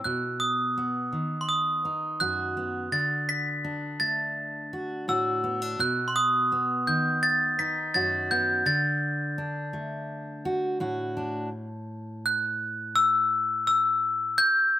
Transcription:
0.04 1.13 B2 medium
0.04 0.38 F#6 medium
0.40 1.44 D#6 medium
0.77 2.56 B3 medium
1.12 2.88 D#3 medium
1.41 1.48 C6 medium
1.49 2.22 D#6 medium
1.85 2.88 D#4 medium
2.20 2.88 F#2 medium
2.20 4.73 F#4 medium
2.20 2.88 F#6 medium
2.57 2.88 B3 medium
2.92 5.79 D3 medium
2.92 3.26 A6 medium
3.29 4.02 B6 medium
3.64 5.43 D4 medium
4.00 5.75 A3 medium
4.00 4.68 A6 medium
4.73 5.08 F#4 medium
5.08 5.79 A2 medium
5.08 7.95 F#4 medium
5.08 5.76 E6 medium
5.44 5.62 B3 medium
5.62 5.79 D4 soft
5.79 6.87 B2 medium
5.79 6.09 F#6 medium
6.08 6.15 C6 medium
6.16 6.89 D#6 medium
6.52 8.30 B3 medium
6.87 8.62 D#3 medium
6.87 7.20 G6 medium
7.23 7.60 A6 loud
7.59 8.62 D#4 medium
7.59 7.96 B6 medium
7.94 8.62 F#2 medium
7.94 8.62 F#4 medium
7.94 8.28 A6 medium
8.31 8.62 B3 medium
8.31 8.68 G6 medium
8.66 11.52 D3 medium
8.66 10.77 A6 medium
9.38 11.16 D4 medium
9.73 11.48 A3 medium
10.45 10.80 F#4 medium
10.80 14.38 A2 medium
10.80 11.48 F#4 medium
11.17 11.48 D4 medium
12.26 12.98 F#6 medium
12.96 13.66 E6 medium
13.67 14.41 E6 medium
14.38 14.79 G6 loud

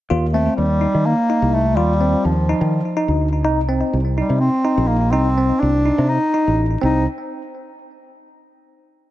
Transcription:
0.10 0.47 D#2 medium
0.10 0.25 F4 medium
0.33 0.55 A3 medium
0.33 0.65 C4 medium
0.56 0.85 D#2 medium
0.56 1.07 G3 medium
0.81 1.12 D#4 medium
0.95 1.13 D#3 medium
1.06 1.55 A#3 medium
1.30 1.60 D#4 medium
1.42 1.77 C2 medium
1.53 1.77 A3 medium
1.76 2.14 D#2 medium
1.76 2.26 G3 medium
1.76 1.92 F4 medium
2.01 2.31 C4 medium
2.25 2.52 D#2 medium
2.25 3.21 F3 medium
2.49 2.80 D#4 medium
2.61 2.79 D#3 medium
2.97 3.27 D#4 medium
3.08 3.44 D2 medium
3.44 3.81 C2 medium
3.44 3.60 D#4 medium
3.68 3.99 C4 medium
3.93 4.21 C2 medium
4.16 4.41 G3 medium
4.16 4.48 D#4 medium
4.30 4.48 C3 medium
4.40 4.89 C4 medium
4.65 4.96 D#4 medium
4.77 5.13 A#1 medium
4.87 5.12 A#3 medium
5.11 5.50 C2 medium
5.11 5.61 C4 medium
5.11 5.28 D#4 medium
5.38 5.68 C4 medium
5.59 5.90 C2 medium
5.59 6.10 D4 medium
5.86 6.17 D#4 medium
5.98 6.17 C3 medium
6.09 6.64 D#4 medium
6.34 6.65 D#4 medium
6.47 6.75 A1 medium
6.82 7.05 C2 medium
6.82 7.05 C4 medium
6.82 7.05 D#4 medium

